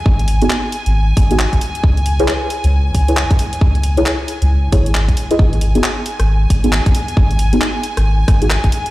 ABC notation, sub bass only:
X:1
M:4/4
L:1/16
Q:"Swing 16ths" 1/4=135
K:G#m
V:1 name="Sub bass" clef=bass
G,,,3 F,,, z3 G,,,3 G,,,3 G,,, z2 | C,,3 B,,, z3 C,,3 C,,3 C,, z2 | C,,3 B,,, z3 C,,3 G,,,3 C,, z2 | G,,,3 F,,, z3 G,,,3 G,,,3 G,,, z2 |
G,,,3 F,,, z3 G,,,3 G,,,3 G,,, z2 |]